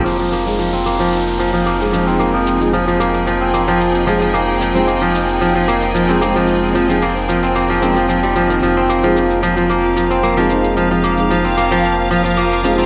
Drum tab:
SH |x-xxxxxxx-xxxxxx|x-xxxxxxx-xxxxxx|x-xxxxxxx-xxxxxx|x-xxxxxxx-xxxxxx|

SH |x-xxxxxxx-xxxxxx|x-xxxxxxx-xxxxxx|